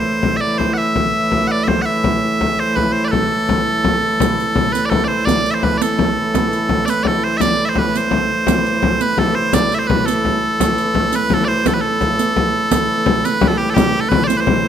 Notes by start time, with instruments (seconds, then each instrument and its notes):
Already playing: hurdy-gurdy A2 E3, bagpipes C5
0.05 frame drum
0.23 frame drum
0.37 bagpipes E5
0.41 bagpipes D5
0.58 bagpipes C5, frame drum
0.74 bagpipes E5 F#5
0.96 frame drum
1.14 frame drum
1.32 frame drum
1.47 bagpipes F#5
1.51 bagpipes D5
1.64 bagpipes E5, frame drum
1.68 bagpipes C5
1.82 bagpipes E5 F#5
1.86 frame drum
2.04 frame drum
2.23 frame drum
2.41 frame drum
2.60 bagpipes C5
2.76 bagpipes B4, frame drum
2.92 bagpipes C5, frame drum
3.05 bagpipes B4 D5
3.11 bagpipes A4, frame drum
3.49 frame drum
3.85 frame drum
4.03 frame drum
4.20 hurdy-gurdy A2 E3, riq, frame drum
4.38 riq, frame drum
4.55 frame drum
4.73 bagpipes B4, riq
4.85 bagpipes D5
4.90 bagpipes A4, frame drum
5.04 bagpipes C5 D5
5.10 frame drum
5.25 bagpipes D5, riq, frame drum
5.45 riq, frame drum
5.51 bagpipes C5 E5
5.63 bagpipes B4, frame drum
5.78 bagpipes D5, riq
5.82 bagpipes A4
5.99 frame drum
6.17 frame drum
6.34 riq, frame drum
6.51 riq, frame drum
6.69 frame drum
6.86 bagpipes D5, riq
6.90 bagpipes B4
7.03 bagpipes D5, frame drum
7.07 bagpipes A4
7.23 bagpipes C5, frame drum
7.37 bagpipes D5 E5, riq, frame drum
7.65 bagpipes C5 E5
7.75 bagpipes B4, frame drum
7.95 bagpipes C5, riq
8.11 frame drum
8.29 frame drum
8.47 hurdy-gurdy A2 E3, riq, frame drum
8.65 riq, frame drum
8.83 frame drum
9.01 bagpipes B4, riq
9.18 bagpipes A4, frame drum
9.35 bagpipes C5, frame drum
9.53 bagpipes D5, riq, frame drum
9.71 bagpipes E5, riq, frame drum
9.79 bagpipes C5
9.87 bagpipes B4, frame drum
10.06 bagpipes A4, riq
10.25 frame drum
10.43 frame drum
10.60 riq, frame drum
10.78 riq, frame drum
10.95 frame drum
11.12 bagpipes B4, riq
11.30 bagpipes A4, frame drum
11.45 bagpipes C5 D5, frame drum
11.65 bagpipes A4, riq, frame drum
11.74 bagpipes B4
11.81 bagpipes A4
12.01 riq, frame drum
12.19 riq
12.36 frame drum
12.71 hurdy-gurdy A2 E3, riq, frame drum
13.06 frame drum
13.25 bagpipes B4, riq
13.41 frame drum
13.48 bagpipes A4
13.58 bagpipes G4
13.70 bagpipes A4
13.74 bagpipes G4, riq, frame drum
14.01 bagpipes A4
14.09 bagpipes B4, frame drum
14.24 bagpipes C5 D5
14.30 riq
14.37 bagpipes B4 C5
14.47 frame drum